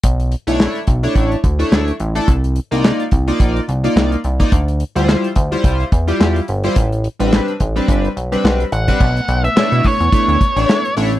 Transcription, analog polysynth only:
X:1
M:4/4
L:1/16
Q:"Swing 16ths" 1/4=107
K:Bphr
V:1 name="Analog polysynth"
z3 [A,DE^c]2 z2 [A,DEc]2 z2 [A,DEc]2 z2 [A,DEA] | z3 [_B,_E=Fd]2 z2 [B,EFd]2 z2 [B,EFd]2 z2 [B,EFd] | z3 [G,E=Fc]2 z2 [G,EFc]2 z2 [G,EFG]2 z2 [G,EFc] | z3 [G,CDB]2 z2 [G,CDB]2 z2 [G,CDB]2 z2 [G,CDB] |
z4 [A,DE^c]2 z2 [A,DEc]2 z [A,DEc]2 z [A,DEc] z |]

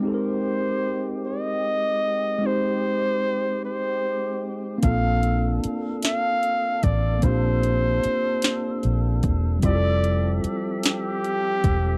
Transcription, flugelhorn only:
X:1
M:6/8
L:1/8
Q:3/8=50
K:Ablyd
V:1 name="Flugelhorn"
c3 e3 | c3 c2 z | f2 z f2 d | c4- c z |
d2 z G3 |]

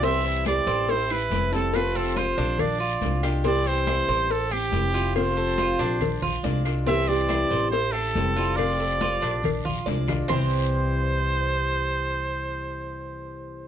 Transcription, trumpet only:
X:1
M:4/4
L:1/8
Q:1/4=140
K:C
V:1 name="Trumpet"
e2 d2 c B2 A | B A c2 d3 z | d c3 A G3 | c6 z2 |
e d3 c A3 | d6 z2 | c8- | c8 |]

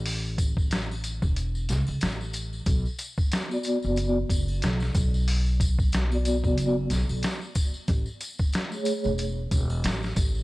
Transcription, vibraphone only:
X:1
M:4/4
L:1/16
Q:"Swing 16ths" 1/4=92
K:Bdor
V:1 name="Vibraphone"
z16 | z4 z [B,Fd]3 [B,Fd] z6 z | z4 z [B,Fd]3 [B,d] z6 z | z4 z [A,Gc]3 z8 |]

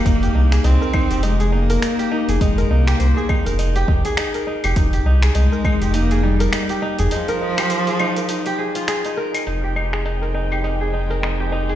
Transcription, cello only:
X:1
M:4/4
L:1/8
Q:"Swing 16ths" 1/4=102
K:Fm
V:1 name="Cello"
B,2 C2 A, B,3 | A, B,3 z4 | z2 A,2 B, G,2 z | F,6 z2 |
z8 |]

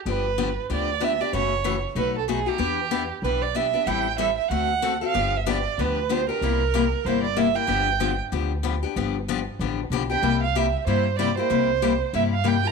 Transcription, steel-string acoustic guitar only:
X:1
M:4/4
L:1/8
Q:"Swing" 1/4=189
K:Gmix
V:1 name="Steel-string acoustic guitar"
[D,F,B,DG] z [D,F,B,DG] z [D,F,B,DG] z [D,F,B,DG] [B,DG] | [^C,E,A,^C^F] z [C,E,A,CF] z [B,,^F,A,^DF] z [B,,F,A,DF] [A,DF] | [E,B,DG] z [E,B,DG] z [E,B,DG] z [E,B,DG] [B,DG] | [E,G,CEA] z [E,G,CEA] z [D,A,C^FA] z [D,A,CFA] [CFA] |
[D,F,B,DG] z [D,F,B,DG] z [D,F,B,DG] z [D,F,B,DG] [B,DG] | [C,G,_B,EG] z [C,G,B,EG] z [C,G,B,EG] z [C,G,B,EG] [B,EG] | [D,F,B,DG] z [D,F,B,DG] z [D,F,B,DG] z [D,F,B,DG] [B,DG] | [D,F,B,DG] z [D,F,B,DG] z [D,F,B,DG] z [D,F,B,DG] [B,DG] |
[C,G,_B,EG] z [C,G,B,EG] z [C,G,B,EG] z [C,G,B,EG] [B,EG] | [C,G,_B,EG] z [C,G,B,EG] z [C,G,B,EG] z [C,G,B,EG] [B,EG] |]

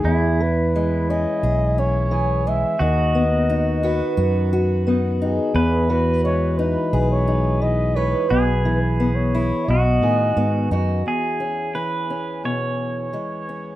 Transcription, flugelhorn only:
X:1
M:4/4
L:1/16
Q:1/4=87
K:E
V:1 name="Flugelhorn"
G2 B4 d4 c4 e2 | d8 z6 G2- | G2 B2 c2 B3 c3 d2 c2 | B3 B2 c3 d6 z2 |
z16 |]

